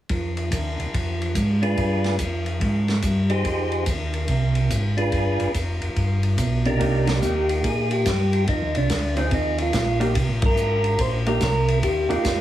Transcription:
0.09 F2, kick, ride
0.37 ride
0.52 D#2, kick, hi-hat pedal, ride
0.79 D#2, ride
0.94 F2, kick, ride
1.22 ride
1.35 G#2, kick, hi-hat pedal, ride
1.62 D4 F4 G#4 B4, ride
1.77 G2, kick, ride
2.04 snare, ride
2.19 F2, kick, hi-hat pedal, ride
2.46 ride
2.61 G#2, kick, ride
2.88 snare, ride
3.02 G2, kick, hi-hat pedal, ride
3.30 D#4 G4 G#4 C5, ride
3.45 F2, kick, ride
3.72 ride
3.86 D#2, kick, hi-hat pedal, ride
4.13 ride
4.28 C2, kick, ride
4.55 ride
4.70 G#1, kick, hi-hat pedal, ride
4.97 D4 F4 G#4 B4, ride
5.12 G1, kick, ride
5.40 G1, ride
5.54 F1, kick, hi-hat pedal, ride
5.82 F1, ride
5.96 G1, kick, ride
6.23 ride
6.38 B1, kick, hi-hat pedal, ride
6.65 C3 D4 D#4 G4 A#4, ride
6.80 C2 A#3 D#4 G4, kick, ride
7.07 G4, snare, ride
7.21 D#2 A#3 D#4 G4, hi-hat pedal
7.49 ride
7.64 A#2 G#4, kick, ride
7.91 G4, ride
8.05 G2, kick, snare, hi-hat pedal, ride
8.33 ride
8.47 F2 D#4, kick, ride
8.63 D#2
8.75 C2 D4, ride
8.90 D2, kick, snare, hi-hat pedal, ride
9.16 F3 C4 D#4 G#4, ride
9.31 D#2 D#4, kick, ride
9.58 F4, ride
9.73 A#1, kick, snare, hi-hat pedal, ride
10.00 A#3 D#4 G4, ride
10.15 C2, kick, ride
10.29 A#1
10.42 G1 A#4, kick, ride
10.56 G#1, hi-hat pedal
10.84 ride
10.99 A#1 C5, kick, ride
11.26 A#3 D#4 G4 A#4, ride
11.41 C2, kick, snare, hi-hat pedal, ride
11.68 ride
11.83 D#2 G4, kick, ride
12.09 D#2 A#3 D#4 F4 G4, ride
12.25 F2, kick, snare, hi-hat pedal, ride

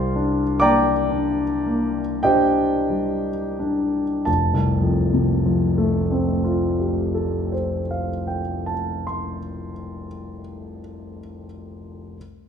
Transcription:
Already playing: C2 G3 C5 F5 A5 C6
0.16 D4
0.60 A#3 D5 G5 A#5 D6
1.11 D4
1.67 A#3
2.23 D4 G4 C5 D#5 G5
2.90 G3
3.59 D4
4.25 F1 A5
4.54 C2
4.82 F2
5.13 C3
5.46 F3
5.78 A3
6.12 C4
6.44 F4
6.80 G4
7.15 A4
7.52 C5
7.91 F5
8.27 G5
8.66 A5
9.07 C6

